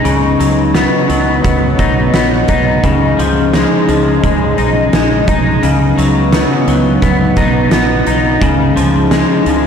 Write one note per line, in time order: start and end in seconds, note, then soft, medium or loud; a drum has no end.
0.00 0.12 F3 medium
0.00 0.12 G#3 medium
0.00 1.78 D#4 medium
0.00 2.80 D#4 medium
0.00 9.67 D#5 medium
0.05 0.36 C#2 medium
0.05 2.83 C#3 medium
0.05 2.81 F#3 medium
0.05 2.81 B3 medium
0.05 2.82 B4 medium
0.05 closed hi-hat medium
0.40 0.86 C#2 medium
0.40 1.08 F#3 medium
0.40 closed hi-hat medium
0.74 1.43 B3 medium
0.74 snare medium
0.74 closed hi-hat medium
1.09 1.40 C#2 medium
1.09 2.91 F#3 soft
1.09 closed hi-hat soft
1.44 1.75 C#2 medium
1.44 2.13 B3 medium
1.44 kick medium
1.44 closed hi-hat medium
1.79 2.10 B1 medium
1.79 2.49 D#4 medium
1.79 kick medium
1.79 closed hi-hat soft
2.14 2.45 A#1 medium
2.14 2.91 B3 medium
2.14 snare loud
2.14 closed hi-hat medium
2.48 2.79 B1 medium
2.48 3.22 D#4 medium
2.48 kick medium
2.48 closed hi-hat medium
2.84 3.14 C#2 medium
2.84 5.62 C#3 medium
2.84 5.60 F3 medium
2.84 5.60 C#4 medium
2.84 5.60 D#4 medium
2.84 5.60 G#4 medium
2.84 kick medium
2.84 closed hi-hat medium
3.19 3.65 C#2 medium
3.19 3.87 F3 medium
3.19 closed hi-hat medium
3.54 4.23 G#3 medium
3.54 snare medium
3.54 closed hi-hat medium
3.88 4.19 C#2 medium
3.88 5.70 F3 medium
3.88 closed hi-hat medium
4.24 4.54 C#2 medium
4.24 4.92 G#3 medium
4.24 kick medium
4.24 closed hi-hat medium
4.58 4.89 B1 medium
4.58 5.28 D#4 medium
4.58 closed hi-hat soft
4.93 5.24 A#1 medium
4.93 5.70 G#3 medium
4.93 snare loud
4.93 closed hi-hat medium
5.28 5.59 B1 medium
5.28 7.37 D#4 medium
5.28 kick medium
5.28 closed hi-hat medium
5.61 5.94 C#2 medium
5.61 8.40 C#3 medium
5.61 8.38 F#3 medium
5.61 8.38 B3 medium
5.61 9.67 D#4 medium
5.61 8.38 B4 medium
5.61 closed hi-hat medium
5.98 6.44 C#2 medium
5.98 6.67 F#3 medium
5.98 closed hi-hat medium
6.33 7.02 B3 medium
6.33 snare loud
6.33 closed hi-hat medium
6.67 6.98 C#2 medium
6.67 8.49 F#3 soft
6.67 closed hi-hat medium
7.02 7.33 C#2 medium
7.02 7.71 B3 medium
7.02 kick medium
7.02 closed hi-hat medium
7.36 7.68 B1 medium
7.36 8.06 D#4 medium
7.36 kick medium
7.36 closed hi-hat soft
7.71 8.03 A#1 medium
7.71 8.49 B3 medium
7.71 snare loud
7.71 closed hi-hat medium
8.06 8.38 B1 medium
8.06 8.79 D#4 medium
8.06 closed hi-hat medium
8.41 8.72 C#2 medium
8.41 9.67 C#3 medium
8.41 9.67 F3 medium
8.41 9.67 C#4 medium
8.41 9.67 G#4 medium
8.41 kick loud
8.41 closed hi-hat medium
8.76 9.23 C#2 medium
8.76 9.45 F3 medium
8.76 closed hi-hat medium
9.11 9.67 G#3 medium
9.11 snare loud
9.11 closed hi-hat medium
9.46 9.67 C#2 medium
9.46 9.67 F3 soft
9.46 closed hi-hat medium